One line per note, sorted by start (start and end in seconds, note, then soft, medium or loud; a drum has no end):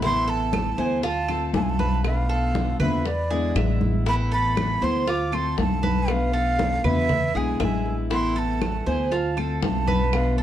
0.00 0.72 A1 medium
0.00 0.52 C3 medium
0.00 0.52 E3 medium
0.00 0.52 A3 medium
0.00 0.53 B3 medium
0.00 0.27 E4 medium
0.00 high bongo medium
0.00 high conga soft
0.04 0.53 E4 medium
0.04 0.31 C6 loud
0.28 0.77 A4 medium
0.28 0.81 A5 loud
0.28 high conga soft
0.53 0.77 E3 soft
0.53 0.78 A3 medium
0.53 0.78 B3 medium
0.53 0.77 E4 medium
0.53 high bongo medium
0.53 high conga medium
0.53 claves medium
0.78 1.50 D2 medium
0.78 1.03 E3 medium
0.78 1.03 A3 medium
0.78 1.03 B3 medium
0.78 1.02 E4 medium
0.78 1.03 C5 medium
0.78 1.04 G#5 medium
0.78 high conga soft
1.03 1.28 F4 medium
1.03 1.51 A5 loud
1.03 muted steel-string acoustic guitar stroke medium
1.03 high bongo medium
1.03 high conga soft
1.28 1.54 A3 medium
1.28 1.54 C4 medium
1.28 1.53 F4 medium
1.28 1.78 A4 medium
1.28 high conga soft
1.28 claves medium
1.53 2.73 B1 medium
1.53 2.03 D3 medium
1.53 2.04 A3 medium
1.53 2.04 C4 medium
1.53 2.04 F4 medium
1.53 1.64 A5 medium
1.53 high bongo medium
1.53 low bongo medium
1.53 high conga medium
1.62 1.71 G#5 medium
1.69 2.05 A5 medium
1.79 2.28 B4 medium
1.79 high conga medium
2.04 2.54 B2 medium
2.04 2.54 D3 medium
2.04 2.54 A3 medium
2.04 2.55 B3 medium
2.04 2.55 F4 medium
2.04 2.77 F5 medium
2.04 high bongo medium
2.04 high conga soft
2.04 claves medium
2.29 2.79 A4 medium
2.29 high bongo soft
2.29 high conga soft
2.55 2.79 D3 soft
2.55 2.80 A3 medium
2.55 2.80 B3 medium
2.55 2.79 F4 medium
2.55 high bongo medium
2.55 high conga medium
2.80 3.52 E2 medium
2.80 3.05 D3 medium
2.80 3.05 A3 medium
2.80 3.05 B3 medium
2.80 3.04 F4 medium
2.80 3.29 B4 medium
2.80 3.08 E5 medium
2.80 high conga soft
2.80 low conga medium
2.80 claves medium
3.05 3.82 D5 medium
3.05 muted steel-string acoustic guitar stroke medium
3.05 high bongo medium
3.05 high conga soft
3.30 3.54 D3 medium
3.30 3.55 G#3 medium
3.30 3.55 B3 medium
3.30 3.55 E4 medium
3.30 3.55 G#4 medium
3.30 high bongo soft
3.30 high conga soft
3.56 4.76 A1 loud
3.56 4.05 D3 soft
3.56 4.06 G#3 medium
3.56 4.06 B3 medium
3.56 4.06 E4 medium
3.56 4.05 E5 medium
3.56 high bongo medium
3.56 low bongo medium
3.56 high conga medium
3.56 claves medium
3.81 high bongo soft
3.81 high conga medium
4.06 4.56 C3 medium
4.06 4.55 E3 medium
4.06 4.56 A3 medium
4.06 4.56 B3 medium
4.06 4.31 E4 medium
4.06 4.57 E4 medium
4.06 4.14 B5 loud
4.06 high bongo medium
4.06 high conga soft
4.32 4.81 A4 medium
4.32 4.85 B5 loud
4.32 high conga soft
4.56 4.81 E3 medium
4.56 4.81 A3 medium
4.56 4.81 B3 medium
4.56 4.80 E4 medium
4.56 high bongo medium
4.56 high conga medium
4.56 claves medium
4.82 5.54 D2 medium
4.82 5.06 E3 medium
4.82 5.06 A3 medium
4.82 5.07 B3 medium
4.82 5.06 E4 medium
4.82 5.07 C5 medium
4.82 5.11 C6 loud
4.82 high conga soft
5.07 5.32 F4 medium
5.07 5.36 D6 loud
5.07 muted steel-string acoustic guitar stroke medium
5.07 high bongo medium
5.07 high conga soft
5.32 5.56 A3 medium
5.32 5.57 C4 medium
5.32 5.56 F4 medium
5.32 5.82 A4 medium
5.32 5.59 C6 loud
5.32 high conga soft
5.32 claves medium
5.57 6.78 B1 medium
5.57 6.07 D3 medium
5.57 6.07 A3 medium
5.57 6.08 C4 medium
5.57 6.08 F4 medium
5.57 6.13 A5 loud
5.57 high bongo medium
5.57 low bongo medium
5.57 high conga medium
5.83 6.32 B4 medium
5.83 high conga medium
6.08 6.58 B2 medium
6.08 6.58 D3 medium
6.08 6.58 A3 medium
6.08 6.59 B3 medium
6.08 6.59 F4 medium
6.08 6.88 F5 loud
6.08 high bongo medium
6.08 high conga soft
6.08 claves medium
6.33 6.83 A4 medium
6.33 high bongo soft
6.33 high conga soft
6.59 6.83 D3 soft
6.59 6.84 A3 medium
6.59 6.84 B3 medium
6.59 6.83 F4 soft
6.59 high bongo medium
6.59 high conga medium
6.84 7.31 E2 medium
6.84 7.09 D3 medium
6.84 7.09 A3 medium
6.84 7.09 B3 medium
6.84 7.09 F4 medium
6.84 7.33 B4 medium
6.84 7.38 E5 loud
6.84 high conga soft
6.84 low conga medium
6.84 claves medium
7.09 muted steel-string acoustic guitar stroke medium
7.09 high bongo medium
7.09 high conga soft
7.09 low conga medium
7.34 7.58 B1 medium
7.34 7.59 D3 medium
7.34 7.59 G#3 medium
7.34 7.59 B3 medium
7.34 7.59 E4 medium
7.34 7.59 G#4 medium
7.34 7.61 G#5 medium
7.34 high bongo soft
7.34 high conga soft
7.60 8.80 A1 medium
7.60 8.10 D3 medium
7.60 8.10 G#3 medium
7.60 8.10 B3 medium
7.60 8.10 E4 medium
7.60 8.09 E5 medium
7.60 7.97 G#5 medium
7.60 high bongo medium
7.60 low bongo medium
7.60 high conga medium
7.60 claves medium
7.86 high bongo soft
8.10 8.60 C3 medium
8.10 8.60 E3 medium
8.10 8.60 A3 medium
8.10 8.61 B3 medium
8.10 8.35 E4 medium
8.10 8.61 E4 medium
8.10 8.40 C6 loud
8.10 high bongo medium
8.10 high conga soft
8.36 8.85 A4 medium
8.36 8.90 A5 medium
8.36 high conga soft
8.61 8.85 E3 soft
8.61 8.86 A3 medium
8.61 8.86 B3 soft
8.61 8.85 E4 soft
8.61 high bongo medium
8.61 high conga medium
8.61 claves medium
8.86 9.58 D2 medium
8.86 9.11 E3 medium
8.86 9.10 A3 medium
8.86 9.11 B3 medium
8.86 9.11 E4 medium
8.86 9.11 C5 medium
8.86 9.15 G#5 loud
8.86 high conga soft
9.11 9.36 F4 medium
9.11 9.63 A5 medium
9.11 muted steel-string acoustic guitar stroke medium
9.11 high bongo medium
9.11 high conga soft
9.37 9.62 A3 medium
9.37 9.62 C4 medium
9.37 9.61 F4 medium
9.37 9.86 A4 medium
9.37 high conga soft
9.37 claves medium
9.62 10.43 B1 medium
9.62 10.12 D3 medium
9.62 10.12 A3 medium
9.62 10.13 C4 medium
9.62 10.12 F4 medium
9.62 10.16 A5 medium
9.62 high bongo medium
9.62 low bongo medium
9.62 high conga medium
9.88 10.37 B4 medium
9.88 high conga medium
10.12 10.43 B2 medium
10.12 10.43 D3 medium
10.12 10.43 A3 medium
10.12 10.43 B3 medium
10.12 10.43 F4 medium
10.12 10.43 F5 medium
10.12 high bongo medium
10.12 high conga soft
10.12 claves medium
10.38 10.43 A4 medium
10.38 high bongo soft
10.38 high conga soft